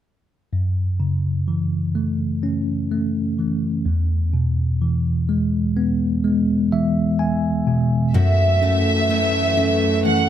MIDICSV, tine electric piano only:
0, 0, Header, 1, 2, 480
1, 0, Start_track
1, 0, Key_signature, 3, "minor"
1, 0, Tempo, 952381
1, 265, Time_signature, 4, 2, 24, 8
1, 5187, End_track
2, 0, Start_track
2, 0, Title_t, "Tine electric piano"
2, 0, Program_c, 0, 4
2, 266, Note_on_c, 0, 42, 35
2, 345, Control_c, 0, 64, 127
2, 503, Note_on_c, 0, 49, 30
2, 745, Note_on_c, 0, 52, 32
2, 984, Note_on_c, 0, 57, 33
2, 1225, Note_on_c, 0, 61, 34
2, 1443, Note_off_c, 0, 49, 0
2, 1462, Note_off_c, 0, 57, 0
2, 1468, Note_on_c, 0, 57, 33
2, 1685, Note_off_c, 0, 52, 0
2, 1707, Note_on_c, 0, 52, 29
2, 1925, Note_off_c, 0, 42, 0
2, 1925, Note_off_c, 0, 61, 0
2, 1932, Note_off_c, 0, 57, 0
2, 1939, Note_off_c, 0, 52, 0
2, 1943, Note_on_c, 0, 40, 41
2, 1951, Control_c, 0, 64, 0
2, 2037, Control_c, 0, 64, 127
2, 2185, Note_on_c, 0, 47, 31
2, 2426, Note_on_c, 0, 52, 33
2, 2666, Note_on_c, 0, 56, 35
2, 2906, Note_on_c, 0, 59, 35
2, 3124, Note_off_c, 0, 47, 0
2, 3140, Note_off_c, 0, 56, 0
2, 3146, Note_on_c, 0, 56, 38
2, 3365, Note_off_c, 0, 52, 0
2, 3389, Note_on_c, 0, 52, 35
2, 3389, Note_on_c, 0, 76, 42
2, 3610, Note_off_c, 0, 76, 0
2, 3625, Note_on_c, 0, 80, 42
2, 3844, Note_off_c, 0, 40, 0
2, 3845, Note_off_c, 0, 59, 0
2, 3865, Note_on_c, 0, 47, 48
2, 4085, Note_off_c, 0, 56, 0
2, 4085, Note_off_c, 0, 80, 0
2, 4086, Note_off_c, 0, 52, 0
2, 4098, Note_off_c, 0, 47, 0
2, 4103, Note_on_c, 0, 42, 46
2, 4112, Control_c, 0, 64, 0
2, 4206, Control_c, 0, 64, 127
2, 4344, Note_on_c, 0, 61, 39
2, 4583, Note_on_c, 0, 57, 41
2, 4818, Note_off_c, 0, 61, 0
2, 4824, Note_on_c, 0, 61, 41
2, 5057, Note_off_c, 0, 57, 0
2, 5063, Note_on_c, 0, 57, 42
2, 5187, Note_off_c, 0, 42, 0
2, 5187, Note_off_c, 0, 57, 0
2, 5187, Note_off_c, 0, 61, 0
2, 5187, End_track
0, 0, End_of_file